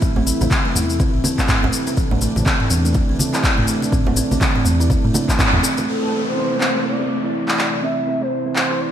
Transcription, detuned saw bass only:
0.02 0.32 A1 loud
0.41 0.47 A1 loud
0.75 1.06 E2 medium
1.14 1.20 A1 medium
1.63 1.69 A1 medium
1.97 2.27 A1 loud
2.36 2.42 A1 loud
2.70 3.01 E2 medium
3.09 3.16 A1 medium
3.58 3.64 A1 medium
3.92 4.23 A1 loud
4.31 4.38 A1 loud
4.66 4.96 E2 medium
5.04 5.11 A2 medium
5.53 5.59 E2 medium

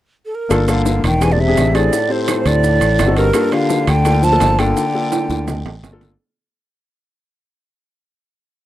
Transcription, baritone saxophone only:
0.68 1.03 D3 medium
1.04 1.24 D#3 medium
1.23 1.35 E3 medium
1.33 1.42 A#2 medium
1.40 1.76 C3 medium
1.75 2.11 A2 medium
2.11 2.46 A2 medium
2.46 3.17 A2 medium
3.17 3.54 G2 medium
3.53 3.87 D3 medium
3.87 4.25 D3 medium
4.23 4.61 F3 loud
4.59 5.84 D3 medium

